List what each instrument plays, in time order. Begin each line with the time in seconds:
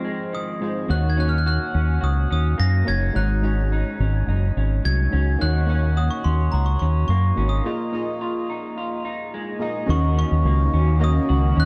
Already playing: clean electric guitar F2 C4, synth keys G#3 D#4 F4 C5
0.05 clean electric guitar G#3
0.33 clean electric guitar D#3, glockenspiel D#6
0.61 synth keys G#3 D#4 F4 C5, clean electric guitar G#3
0.89 fingered electric bass D#2, clean electric guitar D#3 F#4, synth keys A#3 D#4 F#4 C#5, glockenspiel F#6
1.10 glockenspiel G#6
1.17 synth keys A#3 D#4 F#4 C#5, clean electric guitar C#4, glockenspiel F#6
1.29 glockenspiel F6
1.38 glockenspiel F#6
1.46 clean electric guitar F#4, glockenspiel F#6
1.74 fingered electric bass D#2, clean electric guitar C#4
2.01 fingered electric bass C#2, clean electric guitar F#4, glockenspiel D#6
2.31 fingered electric bass D#2, clean electric guitar C#4, glockenspiel D#6
2.58 fingered electric bass F#2, clean electric guitar A#3, glockenspiel A#6
2.85 fingered electric bass F#1, synth keys A#3 D#4 F#4 C#5, clean electric guitar C#4, glockenspiel G#6
3.13 fingered electric bass G#1, clean electric guitar G#2 D#4, synth keys G#3 D#4 F#4 C#5, glockenspiel F#6
3.42 synth keys G#3 D#4 F#4 C#5, clean electric guitar C#4
3.72 clean electric guitar D#4
4.00 fingered electric bass G#1, clean electric guitar C#4
4.27 fingered electric bass F#1, clean electric guitar D#4
4.57 fingered electric bass G#1, clean electric guitar C#4
4.85 fingered electric bass C2, clean electric guitar F#3, glockenspiel G#6
5.11 fingered electric bass C#2, synth keys G#3 D#4 F#4 C#5, clean electric guitar C#4
5.38 fingered electric bass D#2, clean electric guitar D#3 F#4, synth keys A#3 D#4 F#4 C#5, glockenspiel F#6
5.66 synth keys A#3 D#4 F#4 C#5, clean electric guitar C#4
5.97 clean electric guitar F#4, glockenspiel D#6
6.10 glockenspiel C#6
6.24 fingered electric bass D#2, clean electric guitar C#4, glockenspiel C6
6.52 fingered electric bass C#2, clean electric guitar F#4, glockenspiel A#5
6.66 glockenspiel C#6
6.79 fingered electric bass D#2, clean electric guitar C#4, glockenspiel C#6
7.08 fingered electric bass F#2, clean electric guitar A#3, glockenspiel C#6
7.36 fingered electric bass G#1, synth keys A#3 D#4 F#4 C#5, clean electric guitar C#4
7.49 glockenspiel D#6
7.64 clean electric guitar A#2 F4, synth keys A#3 F4 G#4 D#5
7.92 synth keys A#3 F4 G#4 D#5, clean electric guitar D#4
8.21 clean electric guitar F4
8.50 clean electric guitar D#4
8.78 clean electric guitar F4
9.05 clean electric guitar D#4
9.34 clean electric guitar G#3
9.59 synth keys A#3 F4 G#4 D#5, clean electric guitar D#4
9.86 fingered electric bass D#2, analog synth pad D#3 A#3 C#4 F#4, clean electric guitar D#3 F#4, synth keys C#4 F#4 A#4 D#5, glockenspiel C#6
10.17 clean electric guitar C#4, glockenspiel C#6
10.32 fingered electric bass D#2
10.45 fingered electric bass C#2, clean electric guitar A#3
10.73 fingered electric bass D#2, clean electric guitar C#4
10.99 clean electric guitar A#3, synth keys C#4 F#4 A#4 D#5
11.04 glockenspiel D#6
11.29 fingered electric bass C#2, clean electric guitar F#4
11.57 fingered electric bass D#2, clean electric guitar C#4, glockenspiel F#6